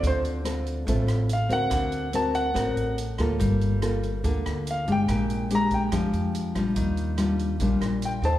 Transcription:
<<
  \new Staff \with { instrumentName = "Grand piano" } { \time 4/4 \key d \phrygian \tempo 4 = 143 c''8 r2 r8 f''8 fis''8~ | fis''4 a''8 fis''4. r4 | r2. f''8 g''8~ | g''4 bes''8 g''4. r4 |
r2. g''8 a''8 | }
  \new Staff \with { instrumentName = "Nylon-string guitar" } { \time 4/4 \key d \phrygian << { <c' f' a'>4 <c' f' a'>4 <c' f' a'>4 r8 <c' fis' bes'>8~ | <c' fis' bes'>4 <c' fis' bes'>4 <c' fis' bes'>4 r8 <bes f' a'>8~ | <bes f' a'>4 <bes f' a'>8 r8 <bes f' a'>4. <aes d' g'>8~ | <aes d' g'>4 <aes d' g'>4 <aes d' g'>4. <g d' f'>8~ |
<g d' f'>4 <g d' f'>4 <g d' f'>4. <ees' a' c''>8 | } \\ { d2 a,2 | d2 a,2 | g2 d2 | bes,2 f2 |
ees2 bes,2 | } >> }
  \new Staff \with { instrumentName = "Upright bass" } { \clef bass \time 4/4 \key d \phrygian d,2 a,,8 a,,4 d,8 | d,2 a,,8 a,,4 d,8 | g,,2 d,8 d,4 g,,8 | bes,,2 f,8 f,4 bes,,8 |
ees,2 bes,,8 bes,,4 ees,8 | }
  \new DrumStaff \with { instrumentName = "Drums" } \drummode { \time 4/4 <hh bd>8 hh8 <hh ss>8 hh8 <hh bd>8 <hh ss>8 hh8 hh8 | <hh bd ss>8 hh8 hh8 hh8 <hh bd ss>8 hh8 hh8 <hh ss>8 | <hh bd>8 hh8 <hh ss>8 hh8 <hh bd>8 <hh ss>8 hh8 hh8 | <hh bd ss>8 hh8 hh8 <hh bd>8 <hh bd ss>8 hh8 hh8 <hh bd ss>8 |
<hh bd>8 hh8 <hh ss>8 hh8 <hh bd>8 <hh ss>8 hh8 hh8 | }
>>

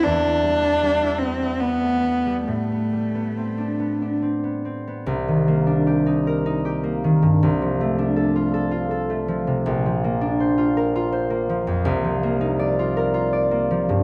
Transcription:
<<
  \new Staff \with { instrumentName = "Cello" } { \time 3/4 \key a \minor \tempo 4 = 78 d'4. c'8 b4 | a2 r4 | \key c \dorian r2. | r2. |
r2. | r2. | }
  \new Staff \with { instrumentName = "Harp" } { \time 3/4 \key a \minor <e, b d' e'>16 b16 g16 b16 g16 e'16 b16 e'16 b16 a16 b16 g16 | a,16 b16 g16 b16 c'16 d'16 b16 d'16 c'16 b16 c'16 b16 | \key c \dorian c,16 ees16 bes16 d'16 g'16 ees'16 bes'16 ees'16 g'16 bes16 ees16 g,16 | c,16 f16 a16 d'16 a'16 f'16 a'16 f'16 a'16 a16 f16 c16 |
bes,,16 f16 bes16 d'16 c''16 f'16 bes'16 f'16 c''16 bes16 f16 f,16 | c,16 f16 bes16 ees'16 d''16 f'16 bes'16 f'16 d''16 bes16 f16 g,16 | }
>>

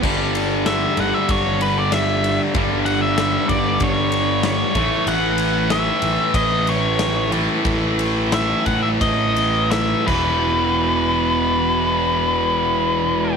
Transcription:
<<
  \new Staff \with { instrumentName = "Lead electric guitar" } { \time 4/4 \key a \lydian \tempo 4 = 94 r4 e''8 fis''16 e''16 cis''8 b'16 d''16 e''8. r16 | r8 fis''16 e''8. d''8 cis''4 cis''4 | fis''4 e''4 dis''8 cis''4 r8 | r4 e''8 fis''16 e''16 dis''4 e''8 b'8~ |
b'1 | }
  \new Staff \with { instrumentName = "Distorted electric guitar" } { \clef bass \time 4/4 \key a \lydian <g, d g>1 | <g, d g>2.~ <g, d g>8 <a, e a>8~ | <a, e a>2.~ <a, e a>8 <a, e a>8~ | <a, e a>2.~ <a, e a>8 <e, b, e>8~ |
<e, b, e>1 | }
  \new Staff \with { instrumentName = "Picked electric bass" } { \clef bass \time 4/4 \key a \lydian g,,4. g,,16 r16 g,,2 | g,,4. g,,8 g,,4. a,,16 r16 | a,,4. a,,16 r16 a,,2 | a,,4. a,,8 a,,4. e,,8~ |
e,,1 | }
  \new DrumStaff \with { instrumentName = "Drums" } \drummode { \time 4/4 <cymc bd>8 cymr8 <cymr sn>8 cymr8 <bd cymr>8 cymr8 <cymr sn>8 cymr8 | <bd cymr>8 cymr8 <cymr sn>8 <bd cymr>8 <bd cymr>8 cymr8 <cymr sn>8 <bd cymr>8 | cymr8 cymr8 <cymr sn>8 cymr8 <bd cymr>8 cymr8 <cymr sn>8 cymr8 | <bd cymr>8 cymr8 <cymr sn>8 <bd cymr>8 <bd cymr>8 cymr8 <cymr sn>8 <cymc bd>8 |
r4 r4 r4 r4 | }
>>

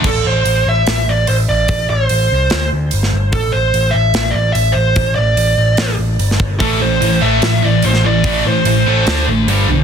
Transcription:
<<
  \new Staff \with { instrumentName = "Lead electric guitar" } { \time 4/4 \key a \minor \tempo 4 = 146 a'8 c''4 e''4 d''8 c''8 d''8~ | d''8 c''2 r4. | a'8 c''4 e''4 d''8 e''8 c''8~ | c''8 d''2 r4. |
a'8 c''4 e''4 d''8 c''8 d''8~ | d''8 c''2 r4. | }
  \new Staff \with { instrumentName = "Distorted electric guitar" } { \clef bass \time 4/4 \key a \minor r1 | r1 | r1 | r1 |
<a, e a>8 <a, e>8 <a, e>8 <a, e a>8 <a, e>8 <a, e>8 <a, e>8 <a, e>8 | <a, e a>8 <a, e>8 <a, e>8 <a, e a>8 <d a d'>8 <d a>8 <g, d g>8 <g, d>8 | }
  \new Staff \with { instrumentName = "Distorted electric guitar" } { \clef bass \time 4/4 \key a \minor r1 | r1 | r1 | r1 |
<a, e a>8 <a, e>8 <a, e>8 <a, e a>8 <a, e>8 <a, e>8 <a, e>8 <a, e>8 | <a, e a>8 <a, e>8 <a, e>8 <a, e a>8 <d a d'>8 <d a>8 <g, d g>8 <g, d>8 | }
  \new Staff \with { instrumentName = "Picked electric bass" } { \clef bass \time 4/4 \key a \minor a,,8 a,,8 a,,8 a,,8 a,,8 a,,8 a,,8 a,,8 | a,,8 a,,8 a,,8 c,8 d,8 d,8 g,,8 g,,8 | a,,8 a,,8 a,,8 a,,8 a,,8 a,,8 a,,8 a,,8 | a,,8 a,,8 a,,8 a,,8 a,,8 a,,8 g,,8 g,,8 |
a,,8 a,,8 a,,8 a,,8 a,,8 a,,8 a,,8 a,,8 | a,,8 a,,8 a,,8 a,,8 d,8 a,,8 g,,8 b,,8 | }
  \new DrumStaff \with { instrumentName = "Drums" } \drummode { \time 4/4 <cymc bd>4 hho4 <hho sn>4 hho4 | <hho bd>4 hho4 <hho sn>4 hho16 sn8. | <hho bd>4 hho4 <hho sn>4 hho4 | <hho bd>4 hho4 <hho sn>4 hho16 sn16 bd8 |
<hho bd>4 hho4 <hho sn>4 hho16 sn8. | <hho bd>4 hho4 <hho sn>4 hho4 | }
>>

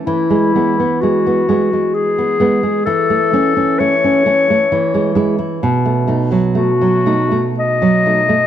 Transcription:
<<
  \new Staff \with { instrumentName = "Clarinet" } { \time 3/4 \key e \major \tempo 4 = 65 e'4 fis'4 gis'4 | a'4 cis''4. r8 | r4 fis'4 dis''4 | }
  \new Staff \with { instrumentName = "Nylon-string guitar" } { \time 3/4 \key e \major e16 gis16 <gis b>16 b16 gis16 b16 <gis b>16 gis8 b16 <gis b>16 gis16 | e16 a16 <a cis'>16 cis'16 a16 cis'16 <a cis'>16 a16 e16 gis16 <gis e'>16 e'16 | b,16 a16 <a dis'>16 fis16 a16 fis16 <a dis'>16 a8 fis16 <a dis'>16 a16 | }
>>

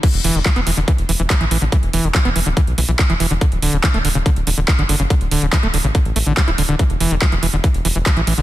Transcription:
<<
  \new Staff \with { instrumentName = "Acid bass" } { \clef bass \time 4/4 \key d \dorian \tempo 4 = 142 e16 r16 e16 d16 f16 b16 e16 d16 e16 r16 e16 e16 f16 e16 e16 d16 | e16 r16 e16 d16 f16 b16 e16 d16 e16 r16 e16 e16 f16 e16 e16 d16 | d16 r16 d16 cis16 e16 a16 d16 cis16 d16 r16 d16 d16 e16 d16 d16 cis16 | d16 r16 d16 cis16 e16 a16 d16 cis16 d16 r16 a16 d16 fis16 e'16 d16 d16 |
e16 r16 e16 d16 f16 e16 e16 d16 e16 r16 e16 e16 f16 e16 e16 d16 | }
  \new Staff \with { instrumentName = "Analog synth bass" } { \clef bass \time 4/4 \key d \dorian r16 e,,16 e,,16 e,,16 r16 e,,16 e,,16 e,,16 r16 e,,16 e,,16 e,,16 r16 a,,16 a,,16 a,,16 | r16 e,,16 e,,16 e,,16 r16 e,,16 e,,16 d,,16 r16 b,,16 b,,16 b,,16 r16 e,,16 e,,16 e,,16 | r16 d,,16 d,,16 d,,16 r16 d,,16 d,,16 d,,16 r16 d,,16 d,,16 d,,16 r16 fis,,16 fis,,16 fis,,16 | r16 d,,16 d,,16 d,,16 r16 d,,16 d,,16 a,,16 r16 a,,16 a,,16 a,,16 r16 d,,16 d,,16 d,,16 |
r16 e,,16 e,,16 e,,16 r16 e,,16 e,,16 e,,16 r16 e,,16 e,,16 e,,16 r16 a,,16 a,,16 a,,16 | }
  \new DrumStaff \with { instrumentName = "Drums" } \drummode { \time 4/4 <cymc hh bd>16 hh16 hho16 hh16 <hc hh bd>16 hh16 hho16 hh16 <hh bd>16 hh16 hho16 hh16 <hc hh bd>16 hh16 hho16 hh16 | <hh bd>16 hh16 hho16 hh16 <hc hh bd>16 hh16 hho16 hh16 <hh bd>16 hh16 hho16 hh16 <hc hh bd>16 hh16 hho16 hh16 | <hh bd>16 hh16 hho16 hh16 <hc hh bd>16 hh16 hho16 hh16 <hh bd>16 hh16 hho16 hh16 <hc hh bd>16 hh16 hho16 hh16 | <hh bd>16 hh16 hho16 hh16 <hc hh bd>16 hh16 hho16 hh16 <hh bd>16 hh16 hho16 hh16 <hc hh bd>16 hh16 hho16 hh16 |
<hh bd>16 hh16 hho16 hh16 <hc hh bd>16 hh16 hho16 hh16 <hh bd>16 hh16 hho16 hh16 <hc hh bd>16 hh16 hho16 hh16 | }
>>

